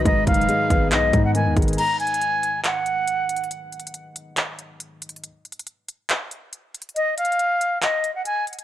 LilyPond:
<<
  \new Staff \with { instrumentName = "Flute" } { \time 4/4 \key aes \dorian \tempo 4 = 139 ees''8 f''4. ees''8. ges''16 aes''8 r8 | bes''8 aes''4. ges''2 | r1 | r1 |
ees''8 f''4. ees''8. ges''16 aes''8 r8 | }
  \new Staff \with { instrumentName = "Analog synth pad" } { \time 4/4 \key aes \dorian <aes dis' b'>1 | r1 | r1 | r1 |
r1 | }
  \new Staff \with { instrumentName = "Grand piano" } { \clef bass \time 4/4 \key aes \dorian aes,8 ees8 aes8 ces'8 ees'8 aes,8 ees8 aes8 | r1 | r1 | r1 |
r1 | }
  \new Staff \with { instrumentName = "808-style bass" } { \clef bass \time 4/4 \key aes \dorian aes,,8 ges,,8 r8 aes,,8 ces,8 aes,8. ees,16 aes,,8 | r1 | r1 | r1 |
r1 | }
  \new DrumStaff \with { instrumentName = "Drums" } \drummode { \time 4/4 \tuplet 3/2 { <hh bd>16 r16 r16 <hh hho bd>16 hh16 hh16 } hh8 <hh bd>8 <hc hh>8 <hh bd>8 hh8 <hh bd>32 hh32 hh32 hh32 | \tuplet 3/2 { <cymc hh>16 r16 r16 hh16 hh16 hh16 } hh8 hh8 <hc hh>8 hh8 \tuplet 3/2 { hh16 r16 r16 hh16 hh16 hh16 } | \tuplet 3/2 { hh16 r16 r16 hh16 hh16 hh16 } hh8 hh8 <hc hh>8 hh8 \tuplet 3/2 { hh16 r16 r16 hh16 hh16 hh16 } | \tuplet 3/2 { hh16 r16 r16 hh16 hh16 hh16 } hh8 hh8 <hc hh>8 hh8 \tuplet 3/2 { hh16 r16 r16 hh16 hh16 hh16 } |
\tuplet 3/2 { hh16 r16 r16 <hh hho>16 hh16 hh16 } hh8 hh8 <hc hh>8 hh8 hh8 hh32 hh32 hh16 | }
>>